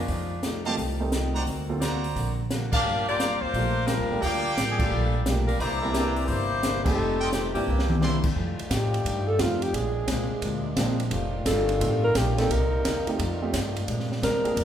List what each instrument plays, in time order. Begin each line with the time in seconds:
Already playing: saxophone section D4 F4
0.08 upright bass F2, steel-string acoustic guitar F3 A3 D#4 G4, kick, open hi-hat
0.43 steel-string acoustic guitar F3 A3 D#4 G4, snare, closed hi-hat
0.65 grand piano D#3 G3 A3 C4 F4, trumpet section G4 D#5 F5 A5, open hi-hat
0.77 upright bass C2, steel-string acoustic guitar F3 A3 D#4 G4, kick, open hi-hat
1.00 grand piano D#3 G3 A3 C4 D#4
1.12 steel-string acoustic guitar F3 A3 D#4 G4, snare, closed hi-hat
1.34 trumpet section F#4 C5 D5 A#5, open hi-hat
1.46 upright bass D2, steel-string acoustic guitar D3 A#3 C4 F#4, kick, open hi-hat
1.69 grand piano D3 F#3 A#3 C4 F4
1.80 steel-string acoustic guitar D3 A#3 C4 F#4, trumpet section F#4 C5 D5 A#5, snare, closed hi-hat
2.04 open hi-hat
2.16 upright bass A#1, steel-string acoustic guitar D3 A#3 C4 F#4, kick, open hi-hat
2.50 steel-string acoustic guitar D3 A#3 C4 F#4, snare, closed hi-hat
2.72 saxophone section D4 G4 A#4 F5, trumpet section G4 D5 F5 A5, kick, crash
2.84 upright bass G1, steel-string acoustic guitar G2 F3 A#3 D4
3.08 saxophone section A#3 F4 G4 D5
3.19 steel-string acoustic guitar G2 F3 A#3 D4, trumpet section G4 D5 F5 A#5, snare, closed hi-hat
3.41 upright bass D2, saxophone section A#3 F4 G4 C5
3.53 upright bass A#1, steel-string acoustic guitar G2 F3 A#3 D4, grand piano G3 A3 A#3 D4 F4, kick, open hi-hat
3.86 steel-string acoustic guitar G2 F3 A#3 D4, saxophone section G3 D4 F4 A#4, snare, closed hi-hat
3.99 upright bass D2
4.10 upright bass G#1, grand piano G3 A3 A#3 D4 G4
4.22 upright bass D2, steel-string acoustic guitar G2 F3 A#3 D4, saxophone section F3 A#3 D4 G4, trumpet section G4 D5 F5 G5, kick, open hi-hat
4.56 upright bass A1, steel-string acoustic guitar G2 F3 A#3 D4, snare, closed hi-hat
4.71 saxophone section G#4
4.79 saxophone section G3 D4 F4 A4, grand piano G3 A3 A#3 D4 F4, kick, crash
4.91 upright bass A#1, steel-string acoustic guitar G2 F3 A#3 D4
5.26 upright bass B1, steel-string acoustic guitar G2 F3 A#3 D4, grand piano G3 A3 A#3 D4 G4, snare, closed hi-hat
5.47 saxophone section G3 D4 F4 A#4, open hi-hat
5.59 upright bass C2, steel-string acoustic guitar C3 E3 A#3 D4, saxophone section A#3 E4 G4 C5, trumpet section E4 C5 D5 A#5, kick, open hi-hat
5.81 saxophone section G3 D4 E4 A#4, grand piano G3 A#3 C4 D4 E4
5.92 saxophone section E3 A#3 D4 G4, snare, closed hi-hat
5.96 steel-string acoustic guitar C3 E3 A#3 D4
6.16 open hi-hat
6.27 upright bass G1, steel-string acoustic guitar C3 E3, saxophone section A#3 E4 G4 C5, kick, open hi-hat
6.31 steel-string acoustic guitar A#3 D4
6.63 steel-string acoustic guitar C3 E3 A#3 D4, snare, closed hi-hat
6.84 saxophone section G3 C4 D#4 A4, grand piano G3 A3 C4 D#4 G4, muted upright bass stroke, kick, crash
6.98 upright bass F1, steel-string acoustic guitar F3 A3 D#4
7.02 steel-string acoustic guitar G4
7.20 trumpet section F4 A4 D#5 G5
7.33 saxophone section D#3 A3 C4 G4, steel-string acoustic guitar F3 A3 D#4 G4, snare, closed hi-hat
7.55 upright bass G2, saxophone section E3 A#3 D4 G4, grand piano G3 A#3 C4 D4 E4, open hi-hat
7.67 upright bass C2, steel-string acoustic guitar C3 E3 A#3 D4
7.79 snare
7.90 mid tom
8.01 steel-string acoustic guitar C3 E3 A#3 D4, grand piano G3 A#3 C4 D4 E4, trumpet section E4 C5 D5 C6, snare
8.23 upright bass E2, kick, crash
8.36 upright bass F2, saxophone section D#3 G3 A3 F4, steel-string acoustic guitar F3 A3 D#4 G4, kick
8.59 muted upright bass stroke, ride
8.69 upright bass A2, steel-string acoustic guitar F3 A3 D#4 G4, alto saxophone G4, kick, snare, hi-hat pedal, ride
8.94 ride
9.05 upright bass G2, steel-string acoustic guitar F3 A3 D#4 G4, kick, ride
9.28 alto saxophone A4
9.39 upright bass F2, steel-string acoustic guitar F3 A3 D#4 G4, grand piano G3 A3 C4 D#4 F4, alto saxophone F4, kick, snare, hi-hat pedal, ride
9.62 alto saxophone G4, ride
9.73 upright bass A#1, steel-string acoustic guitar A#2 G#3 C4 D4, saxophone section C3 G#3 A#3 D4, alto saxophone G#4, kick, ride
10.08 upright bass C2, steel-string acoustic guitar A#2 G#3 C4 D4, kick, snare, hi-hat pedal, ride
10.29 muted upright bass stroke
10.42 upright bass D2, steel-string acoustic guitar A#2 G#3 C4 D4, kick, ride
10.76 upright bass A#1, steel-string acoustic guitar A#2 G#3 C4 D4, grand piano G#3 A#3 C4 D4 F4, kick, snare, hi-hat pedal, ride
11.00 ride
11.11 upright bass F1, saxophone section D#3 G3 A3 F4, steel-string acoustic guitar F3 A3 D#4 G4, kick, ride
11.45 upright bass G1, steel-string acoustic guitar F3 A3 D#4 G4, alto saxophone A4, kick, snare, hi-hat pedal, ride
11.69 ride
11.80 upright bass A1, steel-string acoustic guitar F3 A3 D#4 G4, grand piano G3 A3 C4 D#4 F4, kick, ride
12.04 alto saxophone A#4
12.15 upright bass A#1, steel-string acoustic guitar F3 A3 D#4 G4, alto saxophone G4, kick, snare, hi-hat pedal, ride
12.38 grand piano A#3 C4 D4 D#4 G4, alto saxophone A4, snare, ride
12.49 upright bass C2, saxophone section C3 A#3 D#4, steel-string acoustic guitar C3 A#3 D#4 G4, alto saxophone A#4, kick, ride
12.84 upright bass D#2, steel-string acoustic guitar C3 A#3 D#4 G4, kick, snare, hi-hat pedal, ride
13.06 grand piano A3 C4 D#4 F4 G4, muted upright bass stroke, ride
13.18 upright bass F2, saxophone section D#3 G3 A3 F4, steel-string acoustic guitar F3 A3 D#4 G4, kick, ride
13.42 grand piano A3 C4 D#4 F4 G4
13.53 upright bass G2, steel-string acoustic guitar F3 A3 D#4 G4, kick, snare, hi-hat pedal, ride
13.76 ride
13.85 upright bass A#2, steel-string acoustic guitar A#2 G#3 C4, saxophone section C3 G#3 A#3 D4, kick, ride
13.89 steel-string acoustic guitar D4
14.00 snare
14.12 snare
14.22 upright bass D#2, steel-string acoustic guitar A#2 G#3 C4 D4, alto saxophone A#4, kick, snare, hi-hat pedal, ride
14.44 grand piano A#3 C4 D4 F4 G#4, muted upright bass stroke, ride
14.56 upright bass F2, steel-string acoustic guitar A#2 G#3 C4 D4, kick, ride